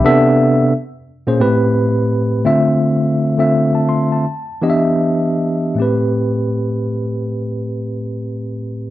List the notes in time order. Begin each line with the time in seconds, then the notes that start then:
0.04 C3 B3 D4 A4 E5
1.27 A#2 A#3 C#4 G#4 C5
1.40 A2 A3 C4 G4 B4
2.45 D3 A3 C4 F4 E5
3.38 D3 A3 C4 F4 E5
3.75 A5
3.89 C6
4.12 A5
4.62 E3 B3 D4 G4 D#5
4.70 E5
5.75 A2 A3 C4
5.80 G4 B4